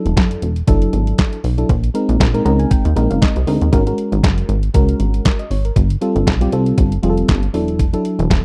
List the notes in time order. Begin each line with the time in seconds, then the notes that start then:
Already playing: F#3 D4 E4 A4
0.05 E1, closed hi-hat
0.17 F#1, kick, snare, clap, closed hi-hat
0.31 closed hi-hat
0.42 E1, closed hi-hat
0.56 closed hi-hat
0.67 F#1 F#3 D4 E4 A4, kick, closed hi-hat
0.82 closed hi-hat
0.93 G#1, closed hi-hat
1.07 closed hi-hat
1.18 kick, snare, clap, closed hi-hat
1.33 closed hi-hat
1.44 B1, open hi-hat
1.57 F#3 D4 E4 A4, closed hi-hat
1.69 A#1, kick, closed hi-hat
1.84 closed hi-hat
1.94 G#3 C4 D#4 A#4, closed hi-hat
2.09 A#1, closed hi-hat
2.20 A#1, kick, snare, clap, closed hi-hat
2.34 G#3 C4 D#4 A#4, closed hi-hat
2.45 C#2 G#3 C4 D#4 A#4 A#5, closed hi-hat
2.59 G#5, closed hi-hat
2.71 G5, kick, closed hi-hat
2.85 D#2, closed hi-hat
2.95 A#1 G#3 C4 D#4 A#4, closed hi-hat
3.10 F#1 F5, closed hi-hat
3.21 D#5, kick, snare, clap, closed hi-hat
3.36 C2, closed hi-hat
3.47 D2 G#3 C4 D#4 A#4, open hi-hat
3.61 D#2, closed hi-hat
3.72 G#1 G#3 C#4 F#4 A#4, kick, closed hi-hat
3.86 G#3 C#4 F#4 A#4, closed hi-hat
3.98 closed hi-hat
4.12 G#1, closed hi-hat
4.23 F#1, kick, snare, clap, closed hi-hat
4.38 closed hi-hat
4.49 G#1, closed hi-hat
4.63 closed hi-hat
4.74 C#2 G#3 C#4 F#4 A#4, kick, closed hi-hat
4.89 closed hi-hat
5.00 G#1, closed hi-hat
5.14 closed hi-hat
5.25 A#4, kick, snare, clap, closed hi-hat
5.39 D#5, closed hi-hat
5.50 G#1 C#5, open hi-hat
5.65 A#4, closed hi-hat
5.76 G1, kick, closed hi-hat
5.90 closed hi-hat
6.01 G3 C4 F4 A4, closed hi-hat
6.16 G1, closed hi-hat
6.27 B1, kick, snare, clap, closed hi-hat
6.41 G3 C4 F4 G4, closed hi-hat
6.52 C2 G3 C4 F4 A4, closed hi-hat
6.66 closed hi-hat
6.78 G1, kick, closed hi-hat
6.92 closed hi-hat
7.03 F1 G3 C4 F4 G#4, closed hi-hat
7.09 A4
7.17 closed hi-hat
7.28 G1, kick, snare, clap, closed hi-hat
7.43 closed hi-hat
7.53 E1 F#3 D4 E4 A4, open hi-hat
7.68 closed hi-hat
7.79 kick, closed hi-hat
7.93 F#3 D4 E4 A4, closed hi-hat
8.05 closed hi-hat
8.19 E1, closed hi-hat
8.30 E1, kick, snare, clap, closed hi-hat